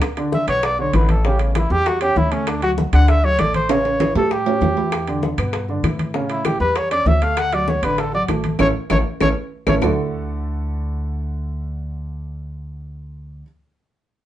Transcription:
0.02 high bongo, high timbale
0.17 grand piano D3 D4, high bongo, high conga, high timbale
0.32 trumpet E5, high bongo, high conga
0.47 upright bass B1, grand piano B2 B3, trumpet C#5, high bongo, high conga, high timbale
0.63 trumpet D5, high bongo, high conga, high timbale
0.79 grand piano D3 D4, trumpet C#5, high bongo, high conga
0.93 upright bass A1, grand piano E3 E4, trumpet B4, high bongo, low bongo, high conga, high timbale
1.09 trumpet A4, high conga, high timbale
1.25 grand piano C#3 C#4, trumpet G4, high bongo, high conga
1.39 trumpet B3, high bongo, high conga, high timbale
1.55 grand piano E3 E4, trumpet E4, high bongo, high conga, high timbale
1.70 upright bass E2, grand piano G3 G4, trumpet G4, high bongo, high conga
1.86 trumpet F#4, high bongo, high conga, high timbale
2.01 grand piano C#4 C#5, trumpet G4, high bongo, high conga, high timbale
2.16 upright bass D2, trumpet E4, high bongo, low bongo, high conga
2.32 grand piano A3 A4, trumpet C#4, high timbale
2.47 trumpet D4, high bongo, high conga, high timbale
2.62 grand piano F#3 F#4, trumpet F#4, high bongo, high conga, high timbale
2.78 high bongo, high conga
2.93 upright bass D2, grand piano D3 D4, trumpet F#5, high bongo, high conga, high timbale
3.08 trumpet E5, high bongo, high conga, high timbale
3.23 grand piano F#3 F#4, trumpet C#5, high bongo, high conga
3.39 upright bass A1, grand piano A3 A4, trumpet D5, high bongo, low bongo, high conga, high timbale
3.54 trumpet C5, high conga, high timbale
3.69 grand piano C#3 C#4, trumpet C#5, high bongo, high timbale
3.85 high bongo, high conga, high timbale
4.00 grand piano E3 E4, high bongo, high conga, high timbale
4.15 upright bass A2, grand piano G3 G4, trumpet A4, high bongo, high conga, low timbale
4.31 trumpet G4, high bongo, high conga
4.46 grand piano C#4 C#5, high bongo, high conga, low timbale
4.61 upright bass E2, high bongo, low bongo, high conga, low timbale
4.77 grand piano E3 E4, high conga, low timbale
4.92 high bongo, high conga, high timbale, claves
5.07 grand piano D3 D4, high bongo, high conga, high timbale
5.23 high bongo, high conga
5.38 upright bass G2, grand piano B2 B3, high bongo, high conga, high timbale, claves
5.53 high bongo, high conga, high timbale
5.69 grand piano D3 D4, high bongo, high conga
5.83 upright bass A2, grand piano E3 E4, high bongo, low bongo, high conga, high timbale, claves
5.99 high conga, high timbale
6.14 grand piano C#3 C#4, high bongo, high conga
6.29 trumpet E4, high bongo, high conga, high timbale
6.45 grand piano E3 E4, trumpet G4, high bongo, high conga, high timbale, claves
6.60 upright bass E2, grand piano G3 G4, trumpet B4, high bongo, high conga
6.76 trumpet C#5, high bongo, high conga, high timbale
6.91 grand piano C#4 C#5, trumpet D5, high bongo, high conga, high timbale, claves
7.06 upright bass D2, trumpet E5, high bongo, low bongo, high conga, low timbale
7.22 grand piano A3 A4, trumpet F5, high conga, high timbale
7.37 trumpet F#5, high bongo, high conga, high timbale, claves
7.52 grand piano F#3 F#4, trumpet D5, high bongo, high conga, high timbale
7.68 trumpet C#5, high bongo, high conga
7.82 upright bass A1, grand piano D3 D4, trumpet B4, high bongo, high conga, high timbale, claves
7.98 trumpet A4, high bongo, high conga, high timbale
8.13 grand piano F#3 F#4, trumpet D5, high bongo, high conga
8.28 upright bass A1, grand piano A3 A4, high bongo, low bongo, high conga, high timbale, low timbale, claves
8.44 high conga, high timbale
8.59 upright bass A1, grand piano A3 C#4 E4, trumpet C#5, high bongo, high conga, high timbale, claves
8.90 upright bass A1, grand piano A3 C#4 E4, trumpet C#5, high bongo, high conga, high timbale, claves
9.20 upright bass A1, grand piano A3 C#4 E4, trumpet C#5, high bongo, high conga, high timbale, claves
9.67 upright bass A1, grand piano A3 C#4 E4, trumpet C#5, high bongo, high conga, high timbale, claves
9.82 upright bass D2, grand piano D3 A3 D4 E4 F#4 A4, low bongo, low conga, low timbale, claves

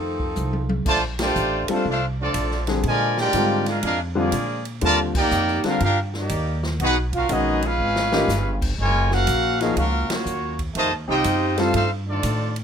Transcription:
Already playing: upright bass F2, trombone section C3 D#3 A3, saxophone section F3 C4 D#4 A4
0.20 kick
0.36 upright bass C2, hi-hat pedal, high tom
0.53 high tom
0.69 high tom
0.85 upright bass A#1, trombone section D3 F3 A3, trumpet section F4 C5 D5 A5, kick, crash
1.19 trombone section A3 D4 G4, trumpet section F4 C5 D5 G5, snare, ride
1.35 upright bass A1, hi-hat pedal
1.68 grand piano G3 C4 F4 A4, trombone section A3 D4 F4, muted upright bass stroke, ride
1.73 trumpet section D4 A4 C5 F5
1.86 upright bass C2, trombone section A3 D4 F4
1.90 trumpet section D4 A4 C5 F5
2.20 trombone section F3 A3 D4, trumpet section C4 F4 A4 D5
2.34 upright bass A#1, hi-hat pedal, ride
2.51 snare
2.67 grand piano D3 G3 C4 G#4, snare, ride
2.83 upright bass A#2, trombone section D3 F3 G#3, ride
2.87 trumpet section F4 A#4 D5 G#5
3.17 trombone section G#3 D4 G4, trumpet section F4 A#4 D5 G5, snare
3.33 upright bass G#2, grand piano D3 G3 C4 F4, hi-hat pedal, ride
3.66 trombone section G#3 D4 F4, trumpet section D4 G#4 A#4 F5, snare, ride
3.83 upright bass F2, trombone section G#3 D4 F4, trumpet section D4 G#4 A#4 F5, ride
4.15 grand piano D3 G3 C4 F4, trombone section F3 G#3 D4, trumpet section A#3 F4 G#4 D5
4.32 upright bass A#2, hi-hat pedal, ride
4.65 ride
4.81 upright bass D#2, grand piano D3 G3 C4 F4, trombone section A3, trumpet section F4 A#4 D5 A5, ride
5.15 trombone section A#3 D#4 G4, trumpet section D#4 A#4 D5 G5, kick, crash
5.31 upright bass F2, hi-hat pedal
5.47 snare
5.64 grand piano D3 G3 C4 F4, trumpet section D4 G4 A#4 F5, trombone section F4, muted upright bass stroke, snare, ride
5.80 upright bass G2, trombone section F4, trumpet section F5, ride
5.84 trumpet section D4 G4 A#4
6.14 trombone section G3 A#3 D#4, snare
6.18 trumpet section A#3 D#4 G4 D5
6.29 upright bass D#2, hi-hat pedal, ride
6.63 snare
6.80 upright bass B1, trombone section B3 D#4 F#4, trumpet section D#4 G#4 B4 F#5, ride
7.13 trumpet section C#4 F#4 F5, trombone section F4, kick, ride
7.17 trumpet section A#4
7.29 upright bass A#1, grand piano D#3 G#3 C#4 F#4, trombone section F#3 B3 D#4, trumpet section B3 F#4 G#4 D#5, hi-hat pedal, ride
7.62 trombone section G#3 B3 F4, trumpet section C#4 G#4 B4 F5, ride
7.78 upright bass G#1
7.96 snare
8.12 grand piano D#3 G#3 C#4 G4, snare
8.28 upright bass G1, snare, hi-hat pedal
8.62 kick, crash
8.78 upright bass F#1, trombone section G#3, trumpet section F4 A#4 C#5 G#5
9.11 trombone section A#3 C#4 F#4, trumpet section C#4 A#4 F5 F#5, snare
9.27 upright bass A#1, hi-hat pedal, ride
9.60 grand piano F3 A#3 D#4 G#4, trombone section A#3 C#4 F4, trumpet section C#4 F#4 A#4 F5, snare, ride
9.75 upright bass C#2, trombone section A#3 C#4 F4, trumpet section C#4 F#4 A#4 F5, ride
10.09 trombone section F#3 A#3 C#4, trumpet section A#3 F4 F#4 C#5, muted upright bass stroke, snare, ride
10.26 upright bass D#2, hi-hat pedal
10.59 kick, ride
10.74 upright bass F2, trombone section C3 D#3 A3, trumpet section F4 C5 D#5 A5, ride
10.92 upright bass D#2
11.08 upright bass C2, trombone section C4 D#4 G4, trumpet section F4 C5 D#5 G5
11.24 upright bass F#2, hi-hat pedal, ride
11.57 grand piano G3 C4 F4 A4, trombone section A3 C4 F4, trumpet section D#4 A4 C5 F5, snare, ride
11.72 upright bass G2, trombone section A3 C4 F4, trumpet section D#4 A4 C5 F5, ride
12.07 trombone section D#3 A3 D4, trumpet section C4 F4 A4 D5
12.23 upright bass A2, hi-hat pedal, ride
12.56 ride

